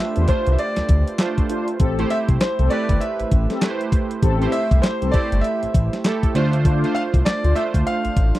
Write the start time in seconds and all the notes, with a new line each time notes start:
Already playing: A3 D4 F4 G4 B4 C5 E5
0.16 E2 D4 F4 C5, closed hi-hat
0.28 A3 D4 F4 C5, kick, closed hi-hat
0.47 C2, closed hi-hat
0.52 E5
0.59 D5, closed hi-hat
0.76 D2, snare, closed hi-hat
0.89 D2, kick, closed hi-hat
1.07 closed hi-hat
1.19 A3 D4 F4 C5, snare, clap, closed hi-hat
1.38 kick, closed hi-hat
1.49 D4 F4 C5, closed hi-hat
1.68 closed hi-hat
1.79 A1 C4 G4 A4, kick, closed hi-hat
1.99 A3 E4 G4 C5, closed hi-hat
2.10 E5, closed hi-hat
2.29 C2, kick, closed hi-hat
2.41 C5, snare, clap, closed hi-hat
2.59 C2 C4 G4 A4, closed hi-hat
2.70 A3 E4 G4 B4 D5, closed hi-hat
2.89 G1, kick, closed hi-hat
3.01 E5, closed hi-hat
3.20 A1, closed hi-hat
3.31 A1, kick, closed hi-hat
3.50 C4 G4 A4, snare, closed hi-hat
3.62 A3 E4 G4 B4, snare, clap, closed hi-hat
3.70 C5
3.81 closed hi-hat
3.92 kick, closed hi-hat
4.11 closed hi-hat
4.22 A1 C4 G4 A4, kick, closed hi-hat
4.41 A3 E4 G4 C5, closed hi-hat
4.52 E5, closed hi-hat
4.71 C2, kick, closed hi-hat
4.82 C5, snare, clap, closed hi-hat
5.01 C2 C4 G4 A4, closed hi-hat
5.12 A3 E4 G4 C5 D5, kick, closed hi-hat
5.32 G1, closed hi-hat
5.41 E5, closed hi-hat
5.62 A1, closed hi-hat
5.74 A1, kick, closed hi-hat
5.93 snare, closed hi-hat
6.05 A3 E4 G4 A4, snare, clap, closed hi-hat
6.23 kick, closed hi-hat
6.34 D2 A3 D4 F4 C5, closed hi-hat
6.53 closed hi-hat
6.64 D4 F4 C5, kick, closed hi-hat
6.84 A3 D4 F4 C5, closed hi-hat
6.95 F5, closed hi-hat
7.14 C2, kick, closed hi-hat
7.25 D5, snare, clap, closed hi-hat
7.44 D2 D4 F4 C5, closed hi-hat
7.55 A3 D4 F4 C5 E5, closed hi-hat
7.74 D2, kick, closed hi-hat
7.87 F5, closed hi-hat
8.05 A1, closed hi-hat
8.17 A1, kick, closed hi-hat
8.34 D4 F4 C5, snare, closed hi-hat